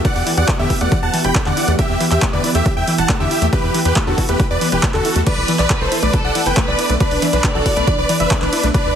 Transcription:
Already playing: ambient pad E3 B3 F#4 G4
0.05 synth pluck E3 F#5, supersaw synth D5 F#5, kick, closed hi-hat
0.16 analog synth bass E2, open hi-hat
0.27 synth pluck E3, open hi-hat
0.37 analog synth bass E2, synth pluck E3 F#5, supersaw synth D5 F#5, closed hi-hat
0.48 synth pluck A3, kick, clap, closed hi-hat
0.59 analog synth bass E2, synth pluck D3 E5, supersaw synth G4 E5
0.70 synth pluck E4, kick, open hi-hat
0.81 analog synth bass E2, synth pluck A3 F#5, supersaw synth D5 F#5, closed hi-hat
0.92 synth pluck E3, kick, closed hi-hat
1.03 analog synth bass E2, supersaw synth F#5 A5, synth pluck A5
1.14 synth pluck E3, open hi-hat
1.24 analog synth bass E1, synth pluck E3 B5, supersaw synth G5 B5, closed hi-hat
1.35 synth pluck A3, kick, clap, closed hi-hat
1.46 analog synth bass E2, synth pluck D3 F#5, supersaw synth D5 F#5, clap
1.57 synth pluck E4, open hi-hat
1.68 analog synth bass E2, synth pluck A3, closed hi-hat
1.79 synth pluck E3 E5, ambient pad E4, supersaw synth G4 E5, kick, closed hi-hat
1.90 analog synth bass E2
2.00 synth pluck E3, open hi-hat
2.11 analog synth bass E2, synth pluck E3 E5, supersaw synth G4 E5, clap, closed hi-hat
2.22 synth pluck A3, kick, clap, closed hi-hat
2.33 analog synth bass E2, synth pluck D3 D5, supersaw synth B4 D5
2.44 synth pluck E4, open hi-hat
2.55 analog synth bass E2, synth pluck A3 E5, supersaw synth G4 E5, closed hi-hat
2.66 synth pluck E3, kick, closed hi-hat
2.77 analog synth bass E2, supersaw synth E5 G5, synth pluck G5
2.88 synth pluck E3, open hi-hat
2.98 analog synth bass E1, synth pluck E3 A5, supersaw synth F#5 A5, closed hi-hat
3.09 synth pluck A3, kick, clap, closed hi-hat
3.20 analog synth bass E2, synth pluck D3 E5, supersaw synth G4 E5
3.31 synth pluck E4, open hi-hat
3.42 analog synth bass E2, synth pluck A3, closed hi-hat
3.53 synth pluck E3 B4, supersaw synth G4 B4, kick, closed hi-hat
3.63 analog synth bass E2
3.74 synth pluck E3, open hi-hat
3.85 analog synth bass E2, synth pluck E3 B4, supersaw synth G4 B4, closed hi-hat
3.96 synth pluck A3, kick, clap, closed hi-hat
4.07 analog synth bass E2, synth pluck D3 A4, supersaw synth F#4 A4
4.18 synth pluck E4, kick, open hi-hat
4.29 analog synth bass E2, synth pluck A3 B4, supersaw synth G4 B4, closed hi-hat
4.40 synth pluck E3, kick, closed hi-hat
4.50 analog synth bass E2, supersaw synth B4 D5, synth pluck D5
4.61 synth pluck E3, open hi-hat
4.72 analog synth bass E1, synth pluck E3 B4, supersaw synth G4 B4, closed hi-hat
4.83 synth pluck A3, kick, clap, closed hi-hat
4.94 analog synth bass E2, synth pluck D3 A4, supersaw synth F#4 A4, clap
5.05 synth pluck E4, open hi-hat
5.16 analog synth bass E2, synth pluck A3, closed hi-hat
5.26 synth pluck E3 D5, ambient pad B3 D4, violin section B4, supersaw synth B4 D5, kick, closed hi-hat, crash, ride
5.37 analog synth bass B1
5.48 synth pluck E3, open hi-hat, ride
5.59 analog synth bass B1, synth pluck E3 D5, supersaw synth B4 D5, clap, closed hi-hat
5.70 synth pluck A3, kick, clap, closed hi-hat, ride
5.81 analog synth bass B1, synth pluck E3 C5, supersaw synth A4 C5
5.92 synth pluck E4, open hi-hat, ride
6.03 analog synth bass B1, synth pluck A3 D5, supersaw synth B4 D5, closed hi-hat
6.13 synth pluck E3, violin section A4, kick, closed hi-hat, ride
6.24 analog synth bass B1, supersaw synth D5 F#5, synth pluck F#5
6.35 synth pluck E3, open hi-hat, ride
6.46 analog synth bass F#1, synth pluck E3 G5, supersaw synth B4 G5, closed hi-hat
6.57 synth pluck A3, violin section B4, kick, clap, closed hi-hat, ride
6.68 analog synth bass B1, synth pluck E3 D5, supersaw synth B4 D5
6.79 synth pluck E4, open hi-hat, ride
6.90 analog synth bass B1, synth pluck A3, closed hi-hat
7.00 synth pluck E3 B4, supersaw synth D4 B4, violin section D5, kick, closed hi-hat, ride
7.11 analog synth bass B1, open hi-hat
7.22 synth pluck E3, open hi-hat, ride
7.33 analog synth bass B1, synth pluck E3 B4, supersaw synth D4 B4, closed hi-hat
7.44 synth pluck A3, kick, clap, closed hi-hat, ride
7.55 analog synth bass B1, synth pluck E3 A4, supersaw synth F#4 A4
7.66 synth pluck E4, kick, open hi-hat, ride
7.76 analog synth bass B1, synth pluck A3 B4, supersaw synth D4 B4, closed hi-hat
7.87 synth pluck E3, kick, closed hi-hat, ride
7.98 analog synth bass B1, supersaw synth B4 D5, synth pluck D5
8.09 synth pluck E3, open hi-hat, ride
8.20 analog synth bass F#1, synth pluck E3 E5, supersaw synth B4 E5, closed hi-hat
8.31 synth pluck A3, kick, clap, closed hi-hat, ride
8.42 analog synth bass B1, synth pluck E3 B4, supersaw synth D4 B4, clap
8.53 synth pluck E4, open hi-hat, ride
8.63 analog synth bass B1, synth pluck A3, closed hi-hat
8.74 ambient pad D3 A3, synth pluck E3 B4, supersaw synth D4 B4, violin section D5, kick, closed hi-hat, ride
8.85 analog synth bass D2

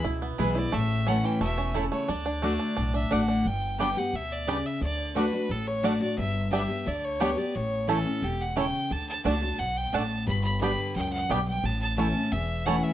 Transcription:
Already playing: five-string banjo G#3
0.04 upright bass C#2, steel-string acoustic guitar B2, five-string banjo E4
0.22 five-string banjo B3
0.38 upright bass B1, steel-string acoustic guitar E3 G#3 B3 E4, mandolin B3 E4 B4 G#5, five-string banjo E4, fiddle B4
0.55 steel-string acoustic guitar B3 E4, five-string banjo E4, fiddle D5
0.72 upright bass A1, steel-string acoustic guitar A2, five-string banjo A3, fiddle E5
1.06 steel-string acoustic guitar E3 A3 C#4 E4, mandolin A3 E4 C#5 A5, five-string banjo C#4, fiddle F#5
1.24 five-string banjo E3, fiddle G5
1.41 upright bass E1, steel-string acoustic guitar B2, five-string banjo A3, fiddle E5
1.58 five-string banjo C#4
1.74 steel-string acoustic guitar C#3, mandolin A3 E4 C#5 A5, five-string banjo E4
1.92 five-string banjo A3, fiddle C#5
2.08 upright bass D2, steel-string acoustic guitar D3, five-string banjo D4, fiddle D5
2.26 five-string banjo D4
2.42 steel-string acoustic guitar D3 A3 D4 F#4, five-string banjo A3, mandolin A3 F#4 D5 F#5
2.59 five-string banjo D4
2.77 upright bass B1, steel-string acoustic guitar A2, five-string banjo D4
2.94 five-string banjo D4, fiddle E5
3.11 upright bass A1, steel-string acoustic guitar D3 A3 D4 F#4, mandolin A3 F#4 D5 F#5, five-string banjo D4, fiddle F#5
3.28 five-string banjo D4
3.45 upright bass G1, steel-string acoustic guitar G2, fiddle G5
3.78 steel-string acoustic guitar D3 G3 B3 G4, five-string banjo G3 B3 D4, mandolin B3 G4 D5 G5, fiddle G5
3.97 steel-string acoustic guitar B3 G4, fiddle F#5
4.13 upright bass D2, steel-string acoustic guitar B2, fiddle E5
4.32 fiddle D5
4.47 steel-string acoustic guitar C#3, five-string banjo G3 B3 D4, mandolin B3 G4 D5 G5
4.66 fiddle E5
4.81 upright bass D2, steel-string acoustic guitar D3, fiddle D5
5.15 steel-string acoustic guitar D3 A3 D4 F#4, mandolin A3 F#4 D5 F#5, five-string banjo A3 D4, fiddle B4
5.32 steel-string acoustic guitar D4 F#4
5.49 upright bass A1, steel-string acoustic guitar A2, fiddle A4
5.67 fiddle C#5
5.83 steel-string acoustic guitar D3 A3 D4 F#4, mandolin A3 F#4 D5 F#5, five-string banjo A3 D4, fiddle D5
6.00 steel-string acoustic guitar D4 F#4, fiddle D5
6.17 upright bass G1, steel-string acoustic guitar G2, fiddle E5
6.51 steel-string acoustic guitar D3 G3 B3 G4, five-string banjo G3 B3 D4, mandolin B3 G4 D5 G5, fiddle E5
6.68 steel-string acoustic guitar B3 G4
6.86 upright bass D2, steel-string acoustic guitar D3, fiddle D5
7.05 fiddle C#5
7.20 steel-string acoustic guitar D3 G3 B3 G4, five-string banjo G3 B3 D4, mandolin B3 G4 D5 G5
7.37 steel-string acoustic guitar B3 G4, fiddle D5
7.55 upright bass A1, steel-string acoustic guitar A2, fiddle C#5
7.87 steel-string acoustic guitar E3 A3 C#4 E4, mandolin A3 E4 C#5 A5, five-string banjo A3 C#4 E4, fiddle A4
8.05 steel-string acoustic guitar C#4 E4
8.22 upright bass E1, steel-string acoustic guitar B2, fiddle G4
8.41 fiddle F#5
8.56 steel-string acoustic guitar C#3, mandolin A3 E4 C#5 A5, five-string banjo A3 C#4 E4, fiddle G5
8.90 upright bass D2, steel-string acoustic guitar D3, fiddle A5
9.09 fiddle A5
9.24 upright bass C#2, steel-string acoustic guitar D3 A3 D4 F#4, mandolin A3 F#4 D5 F#5, five-string banjo A3 D4, fiddle A5
9.41 steel-string acoustic guitar D4 F#4
9.58 upright bass B1, steel-string acoustic guitar B2, fiddle F#5
9.77 fiddle G5
9.93 upright bass A1, steel-string acoustic guitar A2, mandolin A3 F#4 D5 F#5, five-string banjo A3 D4, fiddle A5
10.27 upright bass G1, steel-string acoustic guitar G2, fiddle B5
10.44 fiddle B5
10.60 steel-string acoustic guitar D3 G3 B3 G4, five-string banjo G3 B3 D4, mandolin B3 G4 D5 G5, fiddle B5
10.96 upright bass C#2, steel-string acoustic guitar F#2, fiddle G5
11.13 fiddle F#5
11.29 upright bass B1, steel-string acoustic guitar G2, five-string banjo G3 B3 D4, mandolin B3 G4 D5 G5, fiddle G5
11.48 fiddle G5
11.63 upright bass A1, steel-string acoustic guitar A2, fiddle A5
11.82 fiddle A5
11.97 steel-string acoustic guitar E3 A3 C#4 E4, mandolin A3 E4 C#5 A5, five-string banjo A3 C#4 E4, fiddle A5
12.15 steel-string acoustic guitar C#4 E4
12.32 upright bass E1, steel-string acoustic guitar E2, fiddle E5
12.66 steel-string acoustic guitar E3 A3 C#4 E4, mandolin A3 E4 C#5 A5, five-string banjo A3 C#4 E4, fiddle F#5
12.83 fiddle E5

